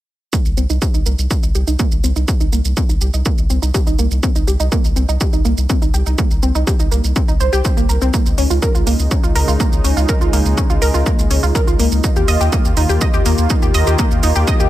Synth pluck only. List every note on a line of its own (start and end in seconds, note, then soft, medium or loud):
0.33 0.38 A#3 medium
0.57 0.63 C4 medium
0.70 0.73 D#4 medium
0.82 0.85 G4 medium
0.94 1.02 D#4 medium
1.06 1.11 A#3 medium
1.31 1.36 C4 medium
1.43 1.46 D#4 medium
1.55 1.58 G4 medium
1.67 1.75 D#4 medium
1.79 1.85 A#3 medium
2.04 2.09 C4 medium
2.16 2.19 D#4 medium
2.28 2.31 G4 medium
2.40 2.48 D#4 medium
2.52 2.58 A#3 medium
2.77 2.82 C4 medium
2.89 2.92 D#4 medium
3.01 3.04 G4 medium
3.14 3.21 D#4 medium
3.26 3.31 A#3 medium
3.50 3.55 C4 medium
3.62 3.65 D#4 medium
3.74 3.78 G4 medium
3.87 3.94 D#4 medium
3.99 4.04 A#3 medium
4.23 4.28 C4 medium
4.36 4.39 D#4 medium
4.47 4.51 G4 medium
4.60 4.67 D#4 medium
4.72 4.77 A#3 medium
4.96 5.02 C4 medium
5.09 5.12 D#4 medium
5.21 5.24 G4 medium
5.33 5.41 D#4 medium
5.45 5.50 A#3 medium
5.69 5.75 C4 medium
5.82 5.85 D#4 medium
5.94 5.97 G4 medium
6.06 6.14 D#4 medium
6.18 6.24 A#3 medium
6.43 6.48 C4 medium
6.55 6.58 D#4 medium
6.67 6.70 G4 medium
6.80 6.87 D#4 medium
6.91 6.97 A#3 medium
7.16 7.21 C4 medium
7.28 7.31 D#4 medium
7.40 7.46 C5 medium
7.53 7.60 G4 loud
7.65 7.68 C4 medium
7.77 7.82 A#3 medium
7.89 7.92 A#4 medium
8.02 8.05 C4 loud
8.14 8.19 A#3 medium
8.38 8.43 C#4 medium
8.50 8.53 F4 medium
8.62 8.68 A#4 loud
8.75 8.82 F4 medium
8.87 8.92 A#3 medium
9.11 9.16 C#4 medium
9.24 9.27 F4 medium
9.36 9.41 A#4 loud
9.48 9.55 F4 medium
9.60 9.65 A#3 medium
9.84 9.90 C#4 medium
9.97 10.00 F4 medium
10.09 10.14 A#4 loud
10.21 10.29 F4 medium
10.33 10.38 A#3 medium
10.57 10.63 C#4 medium
10.70 10.73 F4 medium
10.82 10.87 A#4 loud
10.94 11.02 F4 medium
11.06 11.11 A#3 medium
11.31 11.36 C#4 medium
11.43 11.46 F4 medium
11.55 11.60 A#4 loud
11.67 11.75 F4 medium
11.79 11.85 A#3 medium
12.04 12.09 D#4 medium
12.16 12.19 G4 medium
12.28 12.33 D#5 loud
12.41 12.48 G4 medium
12.53 12.58 A#3 medium
12.77 12.82 D#4 medium
12.89 12.92 G4 medium
13.01 13.07 D#5 medium
13.14 13.21 G4 medium
13.26 13.31 A#3 medium
13.50 13.55 D#4 medium
13.63 13.66 G4 medium
13.74 13.80 D#5 loud
13.87 13.94 G4 medium
13.99 14.04 A#3 medium
14.23 14.29 D#4 medium
14.36 14.39 G4 medium
14.47 14.53 D#5 loud
14.60 14.68 G4 medium